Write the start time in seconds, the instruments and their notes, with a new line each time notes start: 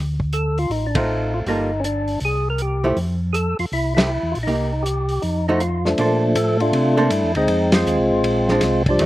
Already playing: tonewheel organ D2
0.20 kick
0.33 tonewheel organ A4, closed hi-hat
0.58 tonewheel organ F4, open hi-hat
0.69 tonewheel organ A1 D#4, open hi-hat
0.87 tonewheel organ D4
0.95 hollow-body jazz guitar A3 C4 F4, tonewheel organ D#4, kick, ride
1.34 tonewheel organ F4
1.46 tonewheel organ G1 D#4, hollow-body jazz guitar G3 A#3 F4 A4, open hi-hat
1.80 tonewheel organ C#4
1.84 tonewheel organ D4, closed hi-hat
2.08 open hi-hat
2.20 tonewheel organ C2, open hi-hat
2.25 tonewheel organ G#4
2.50 tonewheel organ A#4
2.58 tonewheel organ G4, closed hi-hat
2.84 hollow-body jazz guitar F3 A3 E4 G4
2.96 tonewheel organ F2, open hi-hat
3.33 tonewheel organ G#4 A4, closed hi-hat
3.59 tonewheel organ F2 F4, open hi-hat
3.72 tonewheel organ C2 E4, open hi-hat
3.95 hollow-body jazz guitar F3 A3 E4 G4, tonewheel organ E4, snare, ride
4.23 tonewheel organ E2
4.32 tonewheel organ F4, open hi-hat
4.36 tonewheel organ A#1
4.43 tonewheel organ D#4
4.47 tonewheel organ C2, hollow-body jazz guitar A#3 D#4 G4, open hi-hat
4.82 tonewheel organ G4, closed hi-hat
5.09 open hi-hat
5.22 tonewheel organ F2 D#4, open hi-hat
5.48 hollow-body jazz guitar F3 A3 D#4 F#4, tonewheel organ D#4
5.57 tonewheel organ D#4 F4, closed hi-hat
5.85 tonewheel organ F3 A3 D4, snare
5.98 tonewheel organ A#2, hollow-body jazz guitar A#3 D4 A4 C5, ride
6.35 tonewheel organ A2 A4, hi-hat pedal, ride
6.60 tonewheel organ A3 D4 F4, ride
6.73 tonewheel organ C3, ride
6.97 hollow-body jazz guitar A#3 D4 A4 C5
7.10 tonewheel organ G2 E4, hi-hat pedal, ride
7.23 tonewheel organ F2
7.35 tonewheel organ D2 G#3 C4 D#4, ride
7.48 tonewheel organ F2, ride
7.72 tonewheel organ G#3 C4 F4, snare, ride
7.86 tonewheel organ D#2, hi-hat pedal
7.99 tonewheel organ C2
8.11 tonewheel organ G#1
8.23 tonewheel organ A#1, ride
8.48 hollow-body jazz guitar G#3 C4 D4, snare
8.61 tonewheel organ C2, snare, hi-hat pedal, ride
8.86 tonewheel organ F3 D4, kick, ride
8.90 tonewheel organ G3
8.99 tonewheel organ D#2, hollow-body jazz guitar D#3 A3 D4 G4, ride